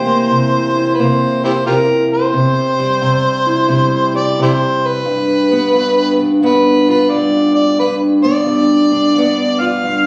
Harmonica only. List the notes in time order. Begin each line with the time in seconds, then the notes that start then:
Already playing: C5
0.95 B4
1.00 C5
1.44 E4 G4 C5
1.67 F4 G4 A#4
2.13 C5
4.16 D5
4.42 E4 G4 C5
4.87 B4
6.45 B4
6.90 B4
7.11 D5
7.55 D5
7.80 B4
8.24 D5
9.60 F5